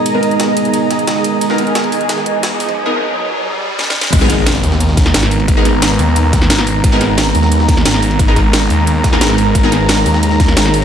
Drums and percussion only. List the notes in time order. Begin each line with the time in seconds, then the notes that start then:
0.06 closed hi-hat, ride
0.23 closed hi-hat, ride
0.31 closed hi-hat
0.40 snare, closed hi-hat, ride
0.57 closed hi-hat, ride
0.65 closed hi-hat
0.74 closed hi-hat, ride
0.91 snare, closed hi-hat, ride
0.99 closed hi-hat
1.07 snare, closed hi-hat, ride
1.16 snare
1.24 closed hi-hat, ride
1.41 closed hi-hat, ride
1.50 snare
1.58 closed hi-hat, ride
1.67 closed hi-hat
1.75 snare, closed hi-hat, ride
1.84 ride
1.92 open hi-hat, ride
2.01 closed hi-hat
2.09 snare, closed hi-hat, ride
2.18 snare
2.26 closed hi-hat
2.43 snare, closed hi-hat, open hi-hat
2.60 open hi-hat, ride
2.69 ride
3.79 snare
3.90 snare
4.01 snare
4.13 kick, closed hi-hat, crash, ride
4.21 snare
4.30 snare, closed hi-hat, ride
4.47 snare, closed hi-hat, ride
4.55 ride
4.64 open hi-hat, ride
4.72 snare
4.80 closed hi-hat, ride
4.89 snare
4.97 kick, snare, closed hi-hat, ride
5.06 snare
5.14 snare, closed hi-hat, open hi-hat
5.23 snare
5.31 open hi-hat, ride
5.40 ride
5.48 kick, closed hi-hat, ride
5.65 snare, closed hi-hat, ride
5.82 snare, closed hi-hat, ride
5.99 open hi-hat, ride
6.16 closed hi-hat, ride
6.33 kick, snare, closed hi-hat, ride
6.42 snare
6.50 snare, closed hi-hat, ride
6.58 snare
6.67 open hi-hat, ride
6.84 kick, closed hi-hat, ride
6.92 snare
7.01 snare, closed hi-hat, ride
7.18 snare, closed hi-hat, ride
7.26 ride
7.35 open hi-hat, ride
7.43 snare
7.52 closed hi-hat, ride
7.60 snare
7.69 kick, snare, closed hi-hat, ride
7.77 snare
7.85 snare, closed hi-hat, open hi-hat
7.94 snare
8.02 open hi-hat, ride
8.11 ride
8.19 kick, closed hi-hat, ride
8.36 kick, snare, closed hi-hat, ride
8.53 snare, closed hi-hat, ride
8.70 open hi-hat, ride
8.87 closed hi-hat, ride
9.04 kick, snare, closed hi-hat, ride
9.13 snare
9.21 snare, closed hi-hat, ride
9.30 snare
9.38 open hi-hat, ride
9.55 kick, closed hi-hat, ride
9.64 snare
9.72 snare, closed hi-hat, ride
9.89 snare, closed hi-hat, ride
9.97 ride
10.06 open hi-hat, ride
10.14 snare
10.23 closed hi-hat, ride
10.31 snare
10.40 kick, snare, closed hi-hat, ride
10.48 snare
10.57 snare, closed hi-hat, open hi-hat
10.65 snare
10.74 open hi-hat, ride